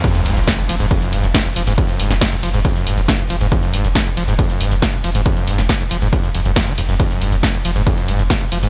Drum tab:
HH |xxoxxxoxxxoxxxoo|xxoxxxoxxxoxxxox|xxoxxxoxxxoxxxoo|xxoxxxoxxxoxxxox|
SD |----o-------o---|---oo-------o---|----o-------o---|---oo-------o---|
BD |o---o---o---o---|o---o---o---o---|o---o---o---o---|o---o---o---o---|

HH |xxoxxxoxxxoxxxoo|
SD |----o-------o---|
BD |o---o---o---o---|